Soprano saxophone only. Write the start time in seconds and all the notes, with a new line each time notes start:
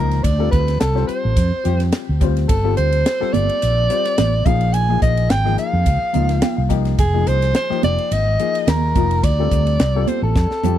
Already playing: A#4
0.23 D5
0.51 B4
0.80 A4
1.07 C5
2.48 A4
2.77 C5
3.33 D5
4.46 F5
4.73 G#5
5.02 D#5
5.30 G5
5.59 F5
7.00 G#4
7.27 C5
7.55 C5
7.84 D5
8.13 D#5
8.69 A#4
9.24 D5
10.08 C5
10.23 A4